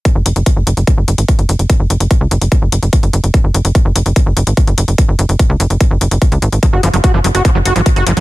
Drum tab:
HH |x-xxx-xxx-xxxxxx|x-xxx-xxx-xxxxxx|x-xxx-xxx-xxxxxx|x-xxx-xxx-xxxxxx|
BD |o---o---o---o---|o---o---o---o---|o---o---o---o---|o---o---o---o---|

HH |x-xxx-xxx-xxxxxx|
BD |o---o---o---o---|